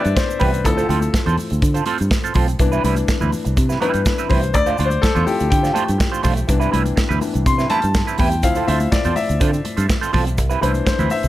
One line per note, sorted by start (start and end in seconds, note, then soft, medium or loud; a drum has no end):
0.00 0.68 E3 medium
0.00 0.67 B3 soft
0.00 0.67 D4 medium
0.00 0.66 E4 medium
0.00 0.64 A4 medium
0.00 0.39 B4 medium
0.00 0.16 C5 medium
0.00 0.67 D5 medium
0.00 0.68 E5 loud
0.05 0.14 G2 medium
0.05 muted clean electric guitar stroke soft
0.05 closed hi-hat soft
0.05 shaker soft
0.16 0.39 C5 medium
0.16 muted clean electric guitar stroke soft
0.16 kick loud
0.16 snare loud
0.16 shaker medium
0.28 muted clean electric guitar stroke soft
0.28 shaker medium
0.39 0.66 C2 medium
0.39 0.55 B3 medium
0.39 0.52 E4 medium
0.39 0.52 G4 medium
0.39 0.63 B4 medium
0.39 0.52 B4 medium
0.39 kick medium
0.39 open hi-hat medium
0.39 high conga medium
0.39 low conga medium
0.53 muted clean electric guitar stroke soft
0.53 closed hi-hat medium
0.53 shaker soft
0.64 0.84 D2 loud
0.64 1.35 F3 medium
0.64 1.35 C4 medium
0.64 1.35 E4 medium
0.64 1.82 A4 medium
0.64 muted clean electric guitar stroke soft
0.64 kick medium
0.64 closed hi-hat medium
0.64 muted conga soft
0.64 shaker medium
0.77 0.87 C4 medium
0.77 0.88 F4 medium
0.77 0.88 A4 medium
0.77 0.89 C5 medium
0.77 closed hi-hat soft
0.77 shaker medium
0.89 1.08 D2 loud
0.89 1.01 C4 medium
0.89 1.02 F4 medium
0.89 1.01 A4 medium
0.89 1.00 C5 medium
0.89 closed hi-hat medium
0.89 muted conga soft
0.89 high conga medium
1.01 muted clean electric guitar stroke soft
1.01 closed hi-hat soft
1.01 high conga medium
1.01 shaker medium
1.13 muted clean electric guitar stroke soft
1.13 kick loud
1.13 snare loud
1.13 shaker medium
1.26 1.36 E2 medium
1.26 1.37 C4 medium
1.26 1.37 F4 medium
1.26 1.38 A4 medium
1.26 1.38 C5 medium
1.26 closed hi-hat soft
1.26 low conga medium
1.26 shaker soft
1.37 open hi-hat soft
1.37 muted conga soft
1.37 high conga medium
1.37 shaker medium
1.50 1.60 D2 medium
1.50 muted clean electric guitar stroke soft
1.50 closed hi-hat soft
1.50 shaker medium
1.62 1.81 D3 loud
1.62 muted clean electric guitar stroke soft
1.62 kick loud
1.62 closed hi-hat medium
1.62 shaker medium
1.74 1.85 C4 soft
1.74 1.85 F4 medium
1.74 1.85 A4 medium
1.74 1.86 C5 medium
1.74 closed hi-hat soft
1.74 shaker medium
1.86 2.02 C4 medium
1.86 1.99 F4 medium
1.86 1.99 A4 medium
1.86 1.98 C5 medium
1.86 closed hi-hat medium
1.86 high conga medium
1.98 2.09 G2 medium
1.98 muted clean electric guitar stroke soft
1.98 closed hi-hat soft
1.98 shaker medium
2.11 muted clean electric guitar stroke soft
2.11 kick loud
2.11 snare loud
2.11 shaker medium
2.23 2.33 C4 medium
2.23 2.34 F4 medium
2.23 2.34 A4 medium
2.23 2.35 C5 medium
2.23 closed hi-hat soft
2.23 shaker medium
2.34 2.54 B1 medium
2.34 2.50 C4 medium
2.34 2.48 F4 medium
2.34 2.48 A4 medium
2.34 2.48 C5 loud
2.34 kick medium
2.34 open hi-hat medium
2.34 muted conga soft
2.34 high conga medium
2.34 low conga medium
2.48 muted clean electric guitar stroke medium
2.48 closed hi-hat medium
2.48 shaker medium
2.59 2.78 C2 medium
2.59 2.93 E3 medium
2.59 2.93 B3 medium
2.59 2.93 D4 medium
2.59 muted clean electric guitar stroke soft
2.59 kick medium
2.59 closed hi-hat medium
2.59 muted conga soft
2.59 shaker medium
2.72 2.83 G3 medium
2.72 2.83 C4 medium
2.72 2.83 E4 medium
2.72 2.84 B4 loud
2.72 shaker medium
2.84 3.03 C2 loud
2.84 2.96 G3 medium
2.84 2.96 C4 medium
2.84 2.96 E4 medium
2.84 2.96 B4 medium
2.84 closed hi-hat medium
2.84 high conga medium
2.96 muted clean electric guitar stroke soft
2.96 closed hi-hat soft
2.96 high conga medium
2.96 shaker soft
3.08 muted clean electric guitar stroke soft
3.08 kick loud
3.08 snare loud
3.08 muted conga soft
3.08 shaker medium
3.20 3.31 D2 medium
3.20 3.31 G3 medium
3.20 3.32 C4 medium
3.20 3.32 E4 medium
3.20 3.32 B4 medium
3.20 low conga medium
3.20 shaker soft
3.32 muted clean electric guitar stroke soft
3.32 open hi-hat soft
3.32 muted conga soft
3.32 high conga medium
3.32 shaker medium
3.45 3.55 C2 medium
3.45 muted clean electric guitar stroke medium
3.45 closed hi-hat soft
3.45 shaker medium
3.56 3.76 C3 medium
3.56 muted clean electric guitar stroke soft
3.56 kick loud
3.56 closed hi-hat medium
3.56 muted conga soft
3.56 shaker medium
3.69 3.79 G3 soft
3.69 3.80 C4 medium
3.69 3.80 E4 medium
3.69 3.80 B4 medium
3.69 snare soft
3.69 shaker medium
3.80 4.03 E3 soft
3.80 4.01 G3 medium
3.80 4.03 B3 soft
3.80 3.94 C4 medium
3.80 4.04 D4 soft
3.80 3.93 E4 medium
3.80 4.32 B4 medium
3.80 3.93 B4 medium
3.80 closed hi-hat medium
3.80 high conga medium
3.94 4.03 G2 medium
3.94 muted clean electric guitar stroke soft
3.94 closed hi-hat soft
3.94 shaker soft
4.05 muted clean electric guitar stroke soft
4.05 kick loud
4.05 snare loud
4.05 muted conga soft
4.05 shaker medium
4.18 4.28 G3 soft
4.18 4.29 C4 medium
4.18 4.29 E4 medium
4.18 4.29 B4 medium
4.18 closed hi-hat soft
4.18 shaker medium
4.29 4.55 C2 medium
4.29 4.45 G3 medium
4.29 4.42 C4 medium
4.29 4.42 E4 medium
4.29 4.41 B4 medium
4.29 4.52 C5 medium
4.29 kick medium
4.29 open hi-hat medium
4.29 muted conga soft
4.29 high conga medium
4.29 low conga medium
4.43 muted clean electric guitar stroke soft
4.43 closed hi-hat medium
4.43 shaker soft
4.53 4.73 D2 loud
4.53 4.68 D5 loud
4.53 muted clean electric guitar stroke soft
4.53 kick medium
4.53 closed hi-hat medium
4.53 muted conga soft
4.53 shaker medium
4.66 4.77 A3 medium
4.66 4.77 D4 medium
4.66 4.78 F4 medium
4.66 4.78 C5 medium
4.66 4.87 D5 medium
4.66 closed hi-hat soft
4.66 shaker medium
4.78 4.97 D2 medium
4.78 4.91 A3 medium
4.78 4.91 D4 medium
4.78 4.90 F4 medium
4.78 4.90 C5 medium
4.78 closed hi-hat medium
4.78 high conga medium
4.78 shaker medium
4.85 5.01 C5 medium
4.90 muted clean electric guitar stroke soft
4.90 closed hi-hat soft
4.90 high conga medium
4.90 shaker soft
5.02 5.27 A4 loud
5.02 muted clean electric guitar stroke soft
5.02 kick loud
5.02 snare loud
5.02 shaker medium
5.15 5.25 E2 medium
5.15 5.25 A3 medium
5.15 5.26 D4 medium
5.15 5.26 F4 medium
5.15 5.26 C5 medium
5.15 closed hi-hat soft
5.15 low conga medium
5.15 shaker soft
5.27 6.45 F3 medium
5.27 6.45 C4 soft
5.27 6.45 E4 medium
5.27 5.32 G4 medium
5.27 open hi-hat medium
5.27 muted conga soft
5.27 high conga medium
5.27 shaker medium
5.39 5.49 D2 medium
5.39 muted clean electric guitar stroke soft
5.39 closed hi-hat soft
5.39 shaker medium
5.50 5.70 D3 medium
5.50 6.69 G5 medium
5.50 muted clean electric guitar stroke soft
5.50 kick loud
5.50 closed hi-hat medium
5.50 shaker medium
5.63 5.72 A3 soft
5.63 5.73 D4 medium
5.63 5.73 F4 medium
5.63 5.74 C5 medium
5.63 snare soft
5.63 closed hi-hat soft
5.63 shaker medium
5.73 5.90 A3 medium
5.73 5.86 D4 medium
5.73 5.85 F4 medium
5.73 5.85 C5 medium
5.73 closed hi-hat medium
5.73 muted conga soft
5.73 high conga medium
5.73 shaker medium
5.86 5.98 G2 medium
5.86 muted clean electric guitar stroke soft
5.86 closed hi-hat soft
5.86 shaker soft
5.98 muted clean electric guitar stroke soft
5.98 kick loud
5.98 snare loud
5.98 shaker medium
6.12 6.21 A3 medium
6.12 6.22 D4 medium
6.12 6.22 F4 medium
6.12 6.23 C5 medium
6.12 shaker medium
6.22 6.43 B1 medium
6.22 6.39 A3 medium
6.22 6.36 D4 medium
6.22 6.35 F4 medium
6.22 6.35 C5 medium
6.22 kick loud
6.22 open hi-hat medium
6.22 muted conga soft
6.22 high conga medium
6.22 low conga medium
6.22 shaker medium
6.36 muted clean electric guitar stroke soft
6.36 closed hi-hat medium
6.36 shaker medium
6.47 6.67 C2 loud
6.47 7.20 E3 medium
6.47 7.20 B3 medium
6.47 7.21 D4 medium
6.47 muted clean electric guitar stroke soft
6.47 kick medium
6.47 closed hi-hat medium
6.47 muted conga soft
6.47 shaker medium
6.60 6.70 G3 medium
6.60 6.70 C4 medium
6.60 6.71 E4 medium
6.60 6.71 B4 medium
6.60 closed hi-hat soft
6.60 shaker medium
6.71 6.92 C2 medium
6.71 6.84 G3 medium
6.71 6.85 C4 medium
6.71 6.84 E4 medium
6.71 6.83 B4 medium
6.71 closed hi-hat medium
6.71 muted conga soft
6.71 high conga medium
6.85 muted clean electric guitar stroke soft
6.85 closed hi-hat soft
6.85 high conga medium
6.85 shaker soft
6.96 muted clean electric guitar stroke soft
6.96 kick loud
6.96 snare loud
6.96 shaker medium
7.09 7.19 D2 medium
7.09 7.20 G3 medium
7.09 7.20 C4 medium
7.09 7.20 E4 medium
7.09 7.21 B4 medium
7.09 low conga medium
7.09 shaker soft
7.21 7.43 E3 soft
7.21 7.44 B3 soft
7.21 7.44 D4 medium
7.21 muted clean electric guitar stroke soft
7.21 open hi-hat medium
7.21 high conga medium
7.21 shaker medium
7.34 7.44 C2 medium
7.34 muted clean electric guitar stroke soft
7.34 closed hi-hat soft
7.34 shaker medium
7.45 7.64 C3 medium
7.45 7.71 C6 medium
7.45 muted clean electric guitar stroke soft
7.45 kick loud
7.45 closed hi-hat medium
7.45 shaker medium
7.58 7.68 G3 medium
7.58 7.69 C4 medium
7.58 7.69 E4 medium
7.58 7.69 B4 medium
7.58 snare soft
7.58 shaker medium
7.69 7.85 G3 medium
7.69 7.82 C4 medium
7.69 7.81 E4 medium
7.69 7.81 B4 medium
7.69 8.20 A5 loud
7.69 closed hi-hat medium
7.69 muted conga soft
7.69 high conga medium
7.82 8.02 G2 medium
7.82 muted clean electric guitar stroke soft
7.82 closed hi-hat soft
7.82 shaker medium
7.94 muted clean electric guitar stroke soft
7.94 kick loud
7.94 snare loud
7.94 muted conga soft
7.94 shaker medium
8.07 8.18 G3 medium
8.07 8.18 C4 medium
8.07 8.18 E4 medium
8.07 8.18 B4 medium
8.07 closed hi-hat soft
8.07 shaker medium
8.18 8.44 E2 medium
8.18 8.34 G3 medium
8.18 8.31 C4 medium
8.18 8.31 E4 medium
8.18 8.30 B4 medium
8.18 8.44 G5 medium
8.18 kick medium
8.18 open hi-hat medium
8.18 muted conga soft
8.18 high conga medium
8.18 low conga medium
8.31 muted clean electric guitar stroke soft
8.31 closed hi-hat medium
8.31 shaker soft
8.43 8.62 D2 medium
8.43 8.76 F3 medium
8.43 8.76 C4 medium
8.43 8.77 E4 medium
8.43 8.69 F5 loud
8.43 muted clean electric guitar stroke soft
8.43 kick medium
8.43 closed hi-hat medium
8.43 muted conga soft
8.43 shaker medium
8.55 8.67 C4 medium
8.55 8.67 F4 medium
8.55 8.67 A4 medium
8.55 8.68 C5 medium
8.55 closed hi-hat soft
8.55 shaker medium
8.68 8.86 D2 loud
8.68 8.80 C4 medium
8.68 8.80 F4 medium
8.68 8.80 A4 medium
8.68 8.80 C5 medium
8.68 8.93 E5 medium
8.68 closed hi-hat medium
8.68 muted conga soft
8.68 high conga medium
8.80 closed hi-hat soft
8.80 high conga medium
8.80 shaker soft
8.92 9.14 D5 medium
8.92 muted clean electric guitar stroke soft
8.92 kick loud
8.92 snare loud
8.92 shaker medium
9.05 9.14 E2 medium
9.05 9.15 C4 medium
9.05 9.15 F4 medium
9.05 9.15 A4 medium
9.05 9.16 C5 medium
9.05 closed hi-hat soft
9.05 low conga medium
9.05 shaker soft
9.16 9.85 E5 medium
9.16 open hi-hat medium
9.16 muted conga soft
9.16 high conga medium
9.16 shaker medium
9.28 9.38 D2 medium
9.28 muted clean electric guitar stroke soft
9.28 closed hi-hat soft
9.28 shaker medium
9.40 9.59 D3 loud
9.40 9.55 C4 medium
9.40 9.53 F4 medium
9.40 9.52 A4 loud
9.40 9.52 C5 loud
9.40 kick loud
9.40 closed hi-hat medium
9.40 shaker medium
9.53 muted clean electric guitar stroke soft
9.53 closed hi-hat soft
9.53 shaker medium
9.64 muted clean electric guitar stroke soft
9.64 closed hi-hat medium
9.64 high conga medium
9.77 9.86 G2 medium
9.77 9.87 C4 medium
9.77 9.87 F4 soft
9.77 9.88 A4 medium
9.77 9.88 C5 medium
9.77 closed hi-hat soft
9.77 shaker medium
9.90 kick loud
9.90 snare loud
9.90 shaker medium
10.01 10.12 C4 medium
10.01 10.12 F4 medium
10.01 10.12 A4 medium
10.01 10.12 C5 medium
10.01 closed hi-hat soft
10.01 shaker medium
10.13 10.38 B1 medium
10.13 10.28 C4 medium
10.13 10.26 F4 medium
10.13 10.26 A4 medium
10.13 10.25 C5 medium
10.13 kick loud
10.13 open hi-hat medium
10.13 high conga medium
10.13 low conga medium
10.27 muted clean electric guitar stroke soft
10.27 closed hi-hat medium
10.27 shaker soft
10.38 10.56 C2 loud
10.38 muted clean electric guitar stroke soft
10.38 kick medium
10.38 closed hi-hat medium
10.38 muted conga soft
10.38 shaker medium
10.50 10.60 G3 medium
10.50 10.60 C4 medium
10.50 10.61 E4 medium
10.50 10.61 B4 medium
10.50 closed hi-hat soft
10.50 shaker medium
10.61 10.81 C2 medium
10.61 10.94 E3 medium
10.61 10.74 G3 medium
10.61 10.95 B3 soft
10.61 10.74 C4 medium
10.61 10.95 D4 medium
10.61 10.73 E4 medium
10.61 10.73 B4 medium
10.61 10.85 C5 medium
10.61 closed hi-hat medium
10.61 muted conga soft
10.61 high conga medium
10.74 muted clean electric guitar stroke medium
10.74 closed hi-hat soft
10.74 high conga medium
10.74 shaker soft
10.85 11.09 C5 medium
10.85 muted clean electric guitar stroke soft
10.85 kick loud
10.85 snare loud
10.85 shaker medium
10.99 11.08 D2 medium
10.99 11.10 G3 medium
10.99 11.10 C4 medium
10.99 11.11 E4 medium
10.99 11.11 B4 medium
10.99 closed hi-hat soft
10.99 low conga medium
10.99 shaker soft
11.10 11.28 E5 medium
11.10 muted clean electric guitar stroke soft
11.10 open hi-hat medium
11.10 muted conga soft
11.10 high conga medium
11.10 shaker medium
11.23 11.28 C2 medium
11.23 muted clean electric guitar stroke soft
11.23 closed hi-hat soft
11.23 shaker medium